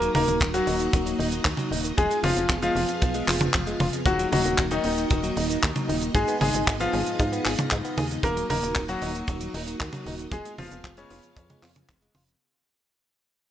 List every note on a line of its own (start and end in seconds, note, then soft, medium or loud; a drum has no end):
0.00 0.13 F#3 loud
0.00 1.95 A#3 medium
0.00 1.94 D#4 medium
0.00 1.95 F#4 medium
0.00 1.95 D#5 loud
0.00 closed hi-hat medium
0.00 cabasa soft
0.15 0.25 D#1 medium
0.15 0.44 A#3 medium
0.15 0.23 D#4 loud
0.15 0.44 A#4 medium
0.15 open hi-hat loud
0.15 high tom medium
0.28 0.39 D#1 medium
0.28 0.36 D#3 medium
0.28 closed hi-hat medium
0.28 cabasa medium
0.40 0.62 D#1 loud
0.40 0.49 D#3 medium
0.40 kick loud
0.40 clap loud
0.40 closed hi-hat medium
0.40 cabasa medium
0.54 0.66 F#3 loud
0.54 1.87 F#3 medium
0.54 1.87 F#4 medium
0.54 closed hi-hat medium
0.54 cabasa soft
0.67 0.88 D#1 medium
0.67 0.75 D#4 loud
0.67 open hi-hat loud
0.79 0.88 D#3 medium
0.79 closed hi-hat medium
0.79 cabasa medium
0.93 1.14 D#1 loud
0.93 1.01 D#3 medium
0.93 kick loud
0.93 closed hi-hat medium
0.93 cabasa medium
1.06 1.18 F#3 loud
1.06 closed hi-hat medium
1.06 cabasa soft
1.19 1.40 D#1 medium
1.19 1.27 D#4 loud
1.19 open hi-hat loud
1.32 1.40 D#3 medium
1.32 closed hi-hat medium
1.32 cabasa medium
1.45 1.56 D#2 medium
1.45 1.53 D#3 medium
1.45 kick loud
1.45 clap loud
1.45 closed hi-hat medium
1.45 cabasa medium
1.57 1.70 F#3 loud
1.57 closed hi-hat medium
1.57 high tom medium
1.57 cabasa soft
1.71 1.92 D#1 medium
1.71 1.79 D#4 loud
1.71 open hi-hat loud
1.84 1.92 D#3 medium
1.84 closed hi-hat medium
1.84 cabasa medium
1.97 2.08 F1 medium
1.97 2.05 F3 medium
1.97 2.17 G#3 medium
1.97 4.04 B3 medium
1.97 4.04 F4 medium
1.97 4.04 G#4 medium
1.97 2.17 G#4 loud
1.97 4.04 F5 medium
1.97 kick loud
1.97 closed hi-hat medium
1.97 cabasa medium
2.10 2.22 G#3 loud
2.10 closed hi-hat medium
2.10 cabasa soft
2.23 2.34 F1 loud
2.23 2.52 F3 medium
2.23 2.31 F4 loud
2.23 2.53 F4 medium
2.23 open hi-hat loud
2.23 high tom medium
2.36 2.47 F1 medium
2.36 2.44 F2 medium
2.36 closed hi-hat medium
2.36 cabasa medium
2.49 2.71 F1 medium
2.49 2.57 F3 medium
2.49 kick loud
2.49 clap loud
2.49 closed hi-hat medium
2.49 cabasa medium
2.62 3.96 F3 medium
2.62 2.74 G#3 loud
2.62 3.96 F4 medium
2.62 closed hi-hat medium
2.62 cabasa medium
2.75 2.86 F1 medium
2.75 2.84 F4 loud
2.75 open hi-hat medium
2.89 2.97 F2 medium
2.89 closed hi-hat medium
2.89 cabasa medium
3.02 3.23 B1 medium
3.02 3.10 F3 medium
3.02 kick loud
3.02 closed hi-hat medium
3.02 cabasa medium
3.14 3.26 G#3 loud
3.14 closed hi-hat medium
3.14 cabasa soft
3.27 3.49 F1 loud
3.27 3.36 F4 loud
3.27 clap medium
3.27 open hi-hat loud
3.40 3.49 F2 medium
3.40 closed hi-hat medium
3.40 high tom medium
3.40 cabasa medium
3.54 3.75 F1 medium
3.54 3.62 F3 medium
3.54 kick loud
3.54 clap loud
3.54 closed hi-hat medium
3.54 cabasa medium
3.67 3.79 G#3 loud
3.67 closed hi-hat soft
3.67 cabasa soft
3.80 3.91 F1 medium
3.80 3.88 F4 loud
3.80 open hi-hat medium
3.80 high tom medium
3.93 4.01 F2 medium
3.93 closed hi-hat medium
3.93 cabasa medium
4.05 4.27 D#1 loud
4.05 4.14 D#3 medium
4.05 4.25 F#3 medium
4.05 6.13 A#3 medium
4.05 10.28 D#4 medium
4.05 4.25 F#4 loud
4.05 6.13 F#4 medium
4.05 10.28 D#5 medium
4.05 kick loud
4.05 closed hi-hat medium
4.05 cabasa medium
4.19 4.31 F#3 loud
4.19 closed hi-hat medium
4.19 cabasa soft
4.32 4.43 D#1 medium
4.32 4.61 F#3 medium
4.32 4.40 D#4 loud
4.32 4.61 F#4 medium
4.32 open hi-hat loud
4.32 high tom medium
4.45 4.56 D#1 medium
4.45 4.53 D#3 medium
4.45 closed hi-hat medium
4.45 cabasa medium
4.57 4.79 D#1 loud
4.57 4.66 D#3 medium
4.57 kick loud
4.57 clap loud
4.57 closed hi-hat medium
4.57 cabasa medium
4.71 6.04 D#3 medium
4.71 4.83 F#3 loud
4.71 6.04 D#4 medium
4.71 closed hi-hat medium
4.71 cabasa medium
4.84 5.06 D#1 medium
4.84 4.92 D#4 loud
4.84 open hi-hat medium
4.98 5.05 D#3 medium
4.98 closed hi-hat medium
4.98 cabasa medium
5.10 5.32 D#1 loud
5.10 5.18 D#3 medium
5.10 kick loud
5.10 closed hi-hat medium
5.10 cabasa medium
5.23 5.35 F#3 loud
5.23 closed hi-hat medium
5.23 cabasa soft
5.37 5.58 D#1 medium
5.37 5.44 D#4 loud
5.37 open hi-hat loud
5.50 5.57 D#3 medium
5.50 closed hi-hat medium
5.50 cabasa medium
5.63 5.74 D#2 medium
5.63 5.70 D#3 medium
5.63 kick loud
5.63 clap loud
5.63 closed hi-hat medium
5.63 cabasa medium
5.76 5.87 F#3 loud
5.76 closed hi-hat medium
5.76 high tom medium
5.76 cabasa soft
5.89 6.10 D#1 medium
5.89 5.97 D#4 loud
5.89 open hi-hat loud
6.02 6.10 D#3 medium
6.02 closed hi-hat medium
6.02 cabasa medium
6.15 6.25 G#1 medium
6.15 6.34 G#3 medium
6.15 6.23 G#3 medium
6.15 8.22 B3 medium
6.15 6.34 G#4 loud
6.15 8.22 G#4 medium
6.15 kick loud
6.15 closed hi-hat medium
6.15 cabasa medium
6.27 6.40 B3 loud
6.27 closed hi-hat medium
6.27 cabasa soft
6.41 6.52 G#1 loud
6.41 6.70 G#3 medium
6.41 6.49 G#4 loud
6.41 6.70 G#4 medium
6.41 open hi-hat loud
6.41 high tom medium
6.54 6.65 G#1 medium
6.54 6.62 G#2 medium
6.54 closed hi-hat medium
6.54 cabasa medium
6.67 6.88 G#1 loud
6.67 6.75 G#3 medium
6.67 kick loud
6.67 clap loud
6.67 closed hi-hat medium
6.67 cabasa medium
6.80 8.13 F3 medium
6.80 6.92 B3 loud
6.80 8.13 F4 loud
6.80 closed hi-hat medium
6.80 cabasa soft
6.93 7.04 G#1 loud
6.93 7.01 G#4 loud
6.93 open hi-hat medium
7.06 7.14 G#2 medium
7.06 closed hi-hat medium
7.06 cabasa medium
7.19 7.40 G#2 medium
7.19 7.27 G#3 medium
7.19 kick loud
7.19 closed hi-hat medium
7.19 cabasa medium
7.32 7.44 B3 loud
7.32 closed hi-hat medium
7.32 cabasa medium
7.45 7.56 G#1 medium
7.45 7.53 G#4 loud
7.45 clap medium
7.45 open hi-hat loud
7.58 7.66 G#2 medium
7.58 closed hi-hat medium
7.58 high tom medium
7.58 cabasa medium
7.71 7.82 G#2 loud
7.71 7.79 G#3 medium
7.71 kick loud
7.71 clap loud
7.71 closed hi-hat medium
7.71 cabasa medium
7.85 7.96 B3 loud
7.85 closed hi-hat soft
7.85 cabasa medium
7.98 8.19 D#2 medium
7.98 8.05 G#4 loud
7.98 open hi-hat medium
7.98 high tom medium
8.11 8.18 G#2 medium
8.11 closed hi-hat medium
8.11 cabasa medium
8.23 8.44 D#1 loud
8.23 8.31 D#3 medium
8.23 10.30 A#3 medium
8.23 8.43 A#3 medium
8.23 10.30 F#4 medium
8.23 8.43 A#4 loud
8.23 kick loud
8.23 closed hi-hat medium
8.23 cabasa medium
8.37 8.48 F#3 loud
8.37 closed hi-hat medium
8.37 cabasa soft
8.50 8.60 D#1 medium
8.50 8.79 A#3 medium
8.50 8.57 D#4 loud
8.50 8.79 A#4 loud
8.50 open hi-hat loud
8.50 high tom medium
8.63 8.73 D#1 medium
8.63 8.70 D#3 medium
8.63 closed hi-hat medium
8.63 cabasa medium
8.75 8.97 D#1 loud
8.75 8.83 D#3 medium
8.75 kick loud
8.75 clap loud
8.75 closed hi-hat medium
8.75 cabasa medium
8.88 10.22 F#3 medium
8.88 9.00 F#3 loud
8.88 10.22 F#4 loud
8.88 closed hi-hat medium
8.88 cabasa medium
9.02 9.23 D#1 medium
9.02 9.10 D#4 loud
9.02 open hi-hat loud
9.15 9.23 D#3 medium
9.15 closed hi-hat medium
9.15 cabasa medium
9.28 9.49 D#1 loud
9.28 9.36 D#3 medium
9.28 kick loud
9.28 closed hi-hat medium
9.28 cabasa medium
9.41 9.53 F#3 loud
9.41 closed hi-hat medium
9.41 cabasa medium
9.54 9.75 D#1 medium
9.54 9.62 D#4 loud
9.54 open hi-hat loud
9.67 9.75 D#3 medium
9.67 closed hi-hat medium
9.67 cabasa medium
9.80 9.91 D#2 medium
9.80 9.88 D#3 medium
9.80 kick loud
9.80 clap loud
9.80 closed hi-hat medium
9.80 cabasa medium
9.93 10.05 F#3 loud
9.93 closed hi-hat medium
9.93 high tom medium
9.93 cabasa medium
10.06 10.27 D#1 medium
10.06 10.14 D#4 loud
10.06 open hi-hat medium
10.19 10.27 D#3 medium
10.19 closed hi-hat medium
10.19 cabasa medium
10.31 10.42 F1 medium
10.31 10.40 F3 medium
10.31 10.52 G#3 medium
10.31 12.39 B3 medium
10.31 12.39 F4 medium
10.31 10.52 G#4 loud
10.31 12.39 G#4 medium
10.31 12.39 F5 loud
10.31 kick loud
10.31 closed hi-hat medium
10.31 cabasa medium
10.45 10.57 G#3 loud
10.45 closed hi-hat medium
10.45 cabasa soft
10.58 10.69 F1 loud
10.58 10.87 F3 medium
10.58 10.66 F4 loud
10.58 10.87 F4 medium
10.58 open hi-hat loud
10.58 high tom medium
10.71 10.82 F1 medium
10.71 10.79 F2 medium
10.71 closed hi-hat medium
10.71 cabasa medium
10.84 11.05 F1 loud
10.84 10.92 F3 medium
10.84 kick loud
10.84 clap loud
10.84 closed hi-hat medium
10.84 cabasa medium
10.97 12.31 C#3 medium
10.97 11.09 G#3 loud
10.97 12.31 C#4 medium
10.97 closed hi-hat medium
10.97 cabasa medium
11.10 11.21 F1 medium
11.10 11.18 F4 loud
11.10 open hi-hat loud
11.23 11.31 F2 medium
11.23 closed hi-hat medium
11.23 cabasa medium
11.36 11.58 F2 loud
11.36 11.44 F3 medium
11.36 kick loud
11.36 closed hi-hat medium
11.36 cabasa medium
11.50 11.61 G#3 loud
11.50 closed hi-hat medium
11.50 high tom medium
11.50 cabasa soft
11.63 11.84 F2 loud
11.63 11.71 F4 loud
11.63 clap medium
11.63 open hi-hat loud
11.76 11.84 F2 medium
11.76 closed hi-hat medium
11.76 high tom medium
11.76 cabasa medium
11.89 12.10 F1 loud
11.89 11.97 F3 medium
11.89 kick loud
11.89 clap loud
11.89 closed hi-hat medium
11.89 cabasa medium
12.01 12.13 G#3 loud
12.01 closed hi-hat medium
12.01 cabasa soft
12.15 12.36 F1 medium
12.15 12.23 F4 loud
12.15 open hi-hat loud
12.15 high tom medium
12.28 12.36 F2 medium
12.28 closed hi-hat medium
12.28 cabasa medium